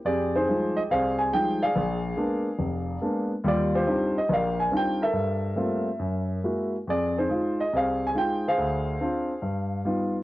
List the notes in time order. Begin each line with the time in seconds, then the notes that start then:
0.05 F2 G4 G#4 D5
0.35 D#4 G#4 C5
0.48 F3 G3 G#3 D#4
0.76 D#5
0.90 C2 G#4 C5 F5
1.19 G#5
1.32 F3 G3 G#3 D#4 G5
1.62 G#4 D5 F5
1.76 A#1
2.17 G#3 A#3 B3 D4
2.59 F1
3.01 G#3 A#3 B3 D4
3.44 D#2 G3 F4 G4
3.48 D5
3.75 F4 G4 C5
3.87 G3 C4 D4 D#4 F4
4.18 D#5
4.29 A#1 A#4 D5
4.33 F5
4.60 G#5
4.71 G3 C4 D4 D#4 F4
4.77 G5
5.02 A4 A#4 E5
5.13 G2
5.56 G3 A3 A#3 C4 F4
5.99 F#2
6.44 G#3 A#3 E4 F#4
6.87 F2 G#4 D5
7.18 D#4 G#4 C5
7.30 G#3 D#4 F4
7.61 D#5
7.73 C2 G#4 C5 F5
8.07 G#5
8.15 G#3 D#4 F4 G5
8.48 G#4 C5 F5
8.58 D2
9.01 C4 D4 F4
9.42 G2
9.85 G3 B3 D#4 F4